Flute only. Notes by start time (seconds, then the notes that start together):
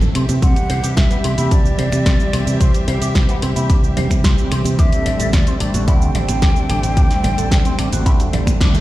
0.42 F#5
0.97 E5
1.51 D5
2.60 C5
2.88 C5
4.78 E5
5.33 D5
5.61 D5
5.88 G5